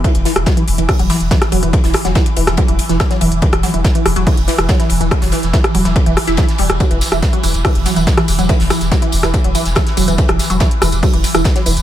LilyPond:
<<
  \new Staff \with { instrumentName = "Synth arpeggio sound" } { \clef bass \time 4/4 \key c \lydian \tempo 4 = 142 e16 r16 e16 r16 fis16 e16 r16 e16 r16 fis16 e16 r16 e16 r16 fis16 e16 | r16 e16 r16 fis16 e16 r16 e16 r16 fis16 e16 r16 e16 r16 fis16 e16 r16 | e16 r16 fis16 e16 r16 e16 r16 fis16 e16 r16 e16 r16 fis16 e16 r16 e16 | r16 fis16 e16 r16 e16 r16 fis16 e16 r16 e16 r16 e'16 e16 r16 g16 r16 |
fis16 e16 r16 e16 r16 fis16 e16 r16 e16 r16 fis16 e16 r16 e16 r16 fis16 | e16 r16 e16 r16 fis16 e16 r16 e16 r16 fis16 e16 r16 e16 r16 fis16 e16 | r16 e16 r16 fis16 e16 r16 e16 r16 fis16 e16 r16 e16 r16 fis16 e16 r16 | }
  \new Staff \with { instrumentName = "Synth drone" } { \clef bass \time 4/4 \key c \lydian e1~ | e1~ | e1~ | e1~ |
e1~ | e1~ | e1 | }
  \new Staff \with { instrumentName = "Sub bass" } { \clef bass \time 4/4 \key c \lydian r16 e,,16 r16 e,,16 r8 e,,16 e,,16 r16 e,,16 r16 e,,16 r8 e,,16 e,,16 | r16 e,,16 r16 e,,16 r8 e,,16 e,,16 r16 e,,16 r16 e,,16 r8 e,,16 e,,16 | r16 e,,16 r16 e,,16 r8 e,,16 e,,16 r16 e,,16 r16 e,,16 r8 e,,16 e,,16 | r16 e,,16 r16 e,,16 r8 e,,16 e,,16 r16 e,,16 r16 e,,16 r8 e,,16 e,,16 |
r16 e,,16 r16 e,,16 r8 e,,16 e,,16 r16 e,,16 r16 e,,16 r8 e,,16 e,,16 | r16 e,,16 r16 e,,16 r8 e,,16 e,,16 r16 e,,16 r16 e,,16 r8 e,,16 e,,16 | r16 e,,16 r16 e,,16 r8 e,,16 e,,16 r16 e,,16 r16 e,,16 r8 e,,16 e,,16 | }
  \new DrumStaff \with { instrumentName = "Drums" } \drummode { \time 4/4 <hh bd cymr>16 <hh cymr>16 <hho cymr sn>16 <hh ss>16 <hh bd cymr sn>16 hh16 <hho cymr>16 <hh cymr>16 <hh hho bd ss>16 hh16 <hho cymr sn>16 hh16 <hh bd cymr sn>16 <hh ss sn>16 <hho cymr>16 hh16 | <hh bd cymr>16 <hho sn>16 <hho cymr ss sn>16 <hh sn>16 <hh bd cymr sn>16 <hh cymr>16 <hho cymr>16 <hh ss sn>16 <hh bd cymr>16 hh16 <hho cymr>16 <hh sn>16 <hh bd cymr ss sn>16 <hh sn>16 <hho cymr>16 hh16 | <hh bd cymr>16 <hh cymr ss>16 <hho cymr sn>16 hh16 <hh bd cymr sn>16 hh16 <hho cymr ss>16 <hh cymr>16 <hh hho bd>16 hh16 <hho cymr sn>16 <hh ss>16 <hh bd cymr sn>16 <hh sn>16 <hho cymr>16 hh16 | <hh bd cymr ss>16 <hho sn>16 <hho cymr sn>16 <hh sn>16 <hh bd cymr sn>16 <hh cymr ss>16 <hho cymr>16 <hh sn>16 <hh bd cymr>16 hh16 <hho cymr ss>16 <hh sn>16 <hh bd cymr sn>16 <hh sn>16 <hho cymr>16 <hh ss>16 |
<hh bd cymr tamb>16 <hh cymr>16 <hho cymr sn tamb>16 <hh ss tamb>16 <hh bd cymr sn tamb>16 hh16 <hho cymr tamb>16 <hh cymr tamb>16 <hh hho bd ss tamb>16 hh16 <hho cymr sn tamb>16 <hh tamb>16 <hh bd cymr sn tamb>16 <hh ss sn>16 <hho cymr tamb>16 <hh tamb>16 | <hh bd cymr tamb>16 <hho sn>16 <hho cymr ss sn tamb>16 <hh sn tamb>16 <hh bd cymr sn tamb>16 <hh cymr>16 <hho cymr tamb>16 <hh ss sn tamb>16 <hh bd cymr tamb>16 hh16 <hho cymr tamb>16 <hh sn tamb>16 <hh bd cymr ss sn tamb>16 <hh sn>16 <hho cymr tamb>16 <hh tamb>16 | <hh bd cymr tamb>16 <hh cymr ss>16 <hho cymr sn tamb>16 <hh tamb>16 <hh bd cymr sn tamb>16 hh16 <hho cymr ss tamb>16 <hh cymr tamb>16 <hh hho bd tamb>16 hh16 <hho cymr sn tamb>16 <hh ss tamb>16 <hh bd cymr sn tamb>16 <hh sn>16 <hho cymr tamb>16 <hh tamb>16 | }
>>